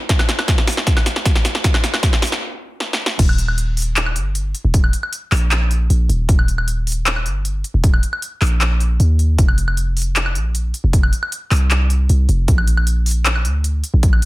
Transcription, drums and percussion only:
0.09 kick loud
0.09 snare medium
0.09 closed hi-hat medium
0.19 snare medium
0.19 high woodblock medium
0.29 snare medium
0.29 closed hi-hat medium
0.39 snare medium
0.39 high woodblock medium
0.48 kick medium
0.48 snare medium
0.48 closed hi-hat medium
0.58 snare medium
0.67 snare loud
0.67 open hi-hat loud
0.72 closed hi-hat medium
0.77 snare medium
0.87 kick medium
0.87 snare loud
0.87 closed hi-hat medium
0.97 snare medium
0.97 high woodblock medium
1.06 snare loud
1.06 closed hi-hat medium
1.16 snare medium
1.25 kick loud
1.25 snare loud
1.25 closed hi-hat medium
1.35 snare medium
1.45 snare loud
1.45 closed hi-hat medium
1.55 snare medium
1.64 kick loud
1.64 snare loud
1.64 closed hi-hat medium
1.74 snare medium
1.74 high woodblock medium
1.84 snare loud
1.84 closed hi-hat medium
1.94 snare medium
1.94 high woodblock medium
2.03 kick loud
2.03 snare loud
2.03 closed hi-hat medium
2.13 snare medium
2.22 snare loud
2.22 open hi-hat loud
2.27 closed hi-hat medium
2.32 snare medium
2.80 snare medium
2.93 snare medium
3.06 snare loud
3.19 kick loud
3.19 closed hi-hat medium
3.19 crash loud
3.29 high woodblock medium
3.38 closed hi-hat medium
3.48 high woodblock medium
3.58 closed hi-hat medium
3.77 open hi-hat medium
3.82 closed hi-hat medium
3.96 clap loud
3.96 closed hi-hat medium
4.06 high woodblock medium
4.16 closed hi-hat medium
4.35 closed hi-hat medium
4.55 closed hi-hat medium
4.74 kick loud
4.74 closed hi-hat medium
4.84 high woodblock medium
4.93 closed hi-hat medium
5.03 high woodblock medium
5.13 closed hi-hat medium
5.32 clap medium
5.32 open hi-hat medium
5.37 closed hi-hat medium
5.51 clap loud
5.51 closed hi-hat medium
5.71 closed hi-hat medium
5.90 closed hi-hat medium
6.09 closed hi-hat medium
6.29 kick loud
6.29 closed hi-hat medium
6.39 high woodblock medium
6.48 closed hi-hat medium
6.58 high woodblock medium
6.68 closed hi-hat medium
6.87 open hi-hat medium
6.92 closed hi-hat medium
7.06 clap loud
7.06 closed hi-hat medium
7.16 high woodblock medium
7.26 closed hi-hat medium
7.45 closed hi-hat medium
7.64 closed hi-hat medium
7.84 kick loud
7.84 closed hi-hat medium
7.94 high woodblock medium
8.03 closed hi-hat medium
8.13 high woodblock medium
8.22 closed hi-hat medium
8.42 clap medium
8.42 open hi-hat medium
8.47 closed hi-hat medium
8.61 clap loud
8.61 closed hi-hat medium
8.80 closed hi-hat medium
9.00 closed hi-hat medium
9.19 closed hi-hat medium
9.38 kick loud
9.38 closed hi-hat medium
9.48 high woodblock medium
9.58 closed hi-hat medium
9.68 high woodblock medium
9.77 closed hi-hat medium
9.97 open hi-hat medium
10.02 closed hi-hat medium
10.16 clap loud
10.16 closed hi-hat medium
10.26 high woodblock medium
10.35 closed hi-hat medium
10.55 closed hi-hat medium
10.74 closed hi-hat medium
10.93 kick loud
10.93 closed hi-hat medium
11.03 high woodblock medium
11.13 closed hi-hat medium
11.23 high woodblock medium
11.32 closed hi-hat medium
11.51 clap medium
11.51 open hi-hat loud
11.56 closed hi-hat medium
11.71 clap loud
11.71 closed hi-hat medium
11.90 closed hi-hat medium
12.09 closed hi-hat medium
12.29 closed hi-hat medium
12.48 kick loud
12.48 closed hi-hat medium
12.58 high woodblock medium
12.67 closed hi-hat medium
12.77 high woodblock medium
12.87 closed hi-hat medium
13.06 open hi-hat loud
13.11 closed hi-hat medium
13.26 clap loud
13.26 closed hi-hat medium
13.36 high woodblock medium
13.45 closed hi-hat medium
13.64 closed hi-hat medium
13.84 closed hi-hat medium
14.03 kick loud
14.03 closed hi-hat medium
14.13 high woodblock medium
14.22 closed hi-hat medium

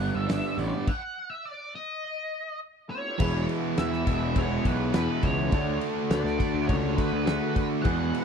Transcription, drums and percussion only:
0.00 open hi-hat medium
0.29 snare loud
0.29 open hi-hat medium
0.59 open hi-hat medium
0.87 kick loud
0.87 crash medium
3.20 kick loud
3.20 crash loud
3.49 ride medium
3.77 snare loud
3.77 ride loud
3.93 snare soft
4.07 kick medium
4.07 ride medium
4.36 kick loud
4.36 ride loud
4.65 kick medium
4.65 ride medium
4.94 snare loud
4.94 ride loud
5.23 kick medium
5.23 ride medium
5.52 kick loud
5.52 ride loud
5.81 ride medium
6.10 snare loud
6.10 ride loud
6.26 snare soft
6.40 kick medium
6.40 ride medium
6.69 kick loud
6.69 ride loud
6.98 kick medium
6.98 ride medium
7.27 snare loud
7.27 ride loud
7.56 kick medium
7.56 ride medium
7.85 kick loud
7.85 ride loud
8.14 ride medium

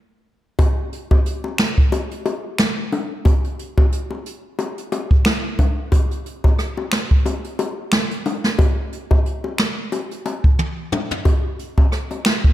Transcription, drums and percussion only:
0.59 kick loud
0.59 closed hi-hat medium
0.59 high bongo medium
0.93 closed hi-hat medium
1.11 kick medium
1.11 high bongo medium
1.26 closed hi-hat medium
1.44 high bongo medium
1.58 finger snap loud
1.58 snare loud
1.58 closed hi-hat medium
1.78 kick medium
1.92 closed hi-hat medium
1.92 high bongo medium
2.11 closed hi-hat medium
2.25 closed hi-hat medium
2.25 high bongo medium
2.58 finger snap medium
2.58 cross-stick loud
2.58 snare loud
2.58 closed hi-hat medium
2.92 closed hi-hat medium
2.92 low bongo medium
3.25 kick loud
3.25 closed hi-hat medium
3.25 high bongo medium
3.44 closed hi-hat medium
3.59 closed hi-hat medium
3.78 kick loud
3.78 high bongo medium
3.92 closed hi-hat medium
4.11 high bongo medium
4.26 closed hi-hat medium
4.59 closed hi-hat medium
4.59 high bongo medium
4.78 closed hi-hat medium
4.92 closed hi-hat medium
4.92 high bongo medium
5.11 kick loud
5.25 finger snap medium
5.25 cross-stick loud
5.25 snare loud
5.25 closed hi-hat medium
5.59 kick medium
5.59 closed hi-hat medium
5.59 low bongo medium
5.92 kick loud
5.92 closed hi-hat medium
5.92 high bongo medium
6.11 closed hi-hat medium
6.26 closed hi-hat medium
6.44 kick loud
6.44 high bongo medium
6.59 cross-stick medium
6.59 closed hi-hat medium
6.77 high bongo medium
6.92 finger snap loud
6.92 snare loud
6.92 closed hi-hat medium
7.11 kick medium
7.26 closed hi-hat medium
7.26 high bongo medium
7.44 closed hi-hat medium
7.59 closed hi-hat medium
7.59 high bongo medium
7.92 finger snap medium
7.92 cross-stick medium
7.92 snare loud
7.92 closed hi-hat medium
8.11 closed hi-hat medium
8.26 closed hi-hat medium
8.26 low bongo medium
8.44 snare medium
8.59 kick loud
8.59 closed hi-hat medium
8.59 high bongo medium
8.92 closed hi-hat medium
9.11 kick loud
9.11 high bongo medium
9.26 closed hi-hat medium
9.44 high bongo medium
9.58 finger snap loud
9.58 snare loud
9.58 closed hi-hat medium
9.92 closed hi-hat medium
9.92 high bongo medium
10.11 closed hi-hat medium
10.25 closed hi-hat medium
10.25 high bongo medium
10.44 kick loud
10.59 high tom medium
10.92 mid tom loud
10.92 low bongo medium
11.11 floor tom loud
11.25 kick loud
11.25 closed hi-hat medium
11.25 high bongo medium
11.59 closed hi-hat medium
11.78 kick loud
11.78 high bongo medium
11.92 cross-stick medium
11.92 closed hi-hat medium
12.11 closed hi-hat medium
12.11 high bongo medium
12.25 finger snap loud
12.25 snare loud
12.25 closed hi-hat medium
12.44 kick loud

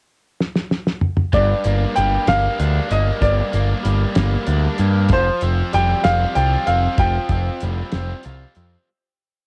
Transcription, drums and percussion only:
0.40 snare medium
0.55 snare medium
0.71 snare medium
0.87 snare medium
1.01 mid tom medium
1.17 mid tom medium
1.33 kick medium
1.33 closed hi-hat medium
1.64 closed hi-hat medium
1.96 closed hi-hat medium
2.28 snare loud
2.28 closed hi-hat medium
2.60 closed hi-hat medium
2.91 closed hi-hat medium
3.22 kick loud
3.22 closed hi-hat medium
3.53 closed hi-hat medium
3.85 closed hi-hat medium
4.15 snare loud
4.15 closed hi-hat medium
4.46 closed hi-hat medium
4.78 closed hi-hat medium
5.08 kick medium
5.08 closed hi-hat medium
5.41 closed hi-hat soft
5.73 closed hi-hat medium
6.04 snare loud
6.04 closed hi-hat medium
6.35 closed hi-hat medium
6.67 closed hi-hat medium
6.98 kick loud
6.98 closed hi-hat medium
7.29 kick medium
7.29 closed hi-hat medium
7.60 closed hi-hat medium
7.92 snare loud
7.92 closed hi-hat medium
8.23 closed hi-hat medium
8.55 closed hi-hat medium

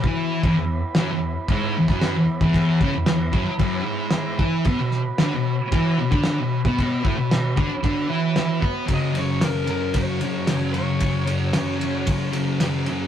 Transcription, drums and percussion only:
0.04 kick loud
0.43 kick loud
0.43 crash medium
0.95 snare loud
0.95 crash medium
1.49 kick loud
1.49 crash medium
1.88 kick loud
1.88 snare soft
2.02 snare loud
2.02 crash medium
2.41 kick loud
2.54 kick medium
2.54 crash medium
2.81 kick loud
3.06 snare loud
3.06 crash medium
3.33 kick loud
3.59 kick loud
3.59 crash medium
4.11 snare loud
4.11 crash medium
4.39 kick loud
4.64 kick loud
4.64 crash medium
4.91 snare soft
5.18 snare loud
5.18 crash medium
5.72 kick loud
5.72 crash medium
6.12 kick loud
6.24 snare loud
6.24 crash medium
6.65 kick loud
6.79 kick loud
6.79 crash medium
7.05 kick loud
7.31 snare loud
7.31 crash medium
7.57 kick loud
7.84 kick loud
7.84 crash medium
8.36 snare loud
8.36 crash medium
8.62 kick medium
8.88 kick loud
8.88 ride medium
9.15 ride medium
9.41 snare loud
9.41 ride medium
9.67 ride medium
9.94 kick loud
9.94 ride medium
10.21 ride medium
10.47 snare loud
10.47 ride medium
10.74 ride medium
11.00 kick loud
11.00 ride medium
11.27 ride medium
11.53 snare loud
11.53 ride loud
11.81 ride medium
12.07 kick loud
12.07 ride medium
12.33 ride medium
12.60 snare loud
12.60 ride medium
12.86 ride medium

